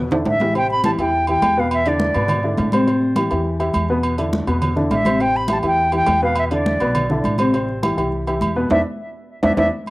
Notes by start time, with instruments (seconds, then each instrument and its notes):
Already playing: upright bass E2
0.11 upright piano D3 D4 E4, high conga, low conga, high timbale
0.25 upright bass A1, flute E5, high conga, high timbale
0.40 upright piano E3 E4 G4, high conga, low timbale
0.55 upright piano C3 C4 C5, flute G5, high conga, low agogo
0.70 flute B5, high conga
0.84 upright piano E3 E4 G4, flute A5, high conga, low agogo
0.98 upright bass E2, upright piano E3 E4 G4, flute G5, low agogo
1.13 high conga
1.27 upright piano E3 E4 G4, flute G5, high conga, low agogo
1.42 upright bass E2, high conga, low timbale, low agogo
1.57 upright piano B2 B3 B4, flute F5, high conga
1.71 flute E5, high conga, low agogo
1.86 upright piano D3 D4 E4, flute D5, high conga, low agogo
2.00 high conga
2.14 upright bass G#2, upright piano B2 B3 B4, high conga, low agogo
2.28 high conga, low conga, low agogo
2.43 upright piano D3 D4 E4, high conga
2.58 upright bass A2, high conga, low timbale, low agogo
2.72 upright piano C3 C4 C5, high conga, low agogo
2.87 upright piano C3 C4 C5, high conga, low agogo
3.02 high conga
3.16 upright piano E3 E4 G4, high conga, low agogo
3.31 upright bass E2, upright piano E3 E4 G4, low agogo
3.45 high conga
3.60 upright piano E3 E4 G4, high conga, low agogo
3.74 upright bass E2, high conga, low agogo
3.89 upright piano B2 B3 B4, high conga
4.03 high conga, low agogo
4.18 upright piano D3 D4 E4, high conga, low agogo
4.33 high conga
4.47 upright bass E2, upright piano B2 B3 B4, high conga, low agogo
4.62 high conga, low conga, low agogo
4.76 upright piano D3 D4 E4, high conga, low conga
4.90 upright bass A1, flute E5, high conga, low timbale, low agogo
5.05 upright piano C3 C4 C5, high conga, low agogo
5.19 upright piano C3 C4 C5, flute G5, high conga, low agogo
5.34 flute B5, high conga
5.48 upright piano E3 E4 G4, high conga, low agogo
5.52 flute A5
5.63 upright bass E2, upright piano E3 E4 G4, low agogo
5.67 flute G5
5.78 high conga
5.92 upright piano E3 E4 G4, flute G5, high conga, low agogo
6.06 upright bass E2, high conga, low timbale, low agogo
6.22 upright piano B2 B3 B4, flute F5, high conga
6.35 flute E5, high conga, low agogo
6.51 upright piano D3 D4 E4, flute D5, high conga, low agogo
6.66 high conga
6.80 upright bass B1, upright piano B2 B3 B4, high conga, low agogo
6.95 high conga, low conga, low agogo
7.10 upright piano D3 D4 E4, high conga, low conga
7.24 upright bass A1, high conga, low agogo
7.38 upright piano C3 C4 C5, high conga, low agogo
7.54 upright piano C3 C4 C5, high conga, low agogo
7.69 high conga
7.83 upright piano E3 E4 G4, high conga, low agogo
7.97 upright bass C2, upright piano E3 E4 G4, low agogo
8.12 high conga
8.27 upright piano E3 E4 G4, high conga, low agogo
8.41 upright bass E2, high conga, low agogo
8.56 upright piano B2 B3 B4, high conga
8.70 upright bass E2, upright piano B3 D4 E4, flute E5, high conga, high timbale
9.43 upright bass E2, upright piano B3 D4 E4, flute E5, high conga, high timbale
9.57 upright bass E2, upright piano B3 D4 E4, flute E5, high conga, high timbale
9.86 high conga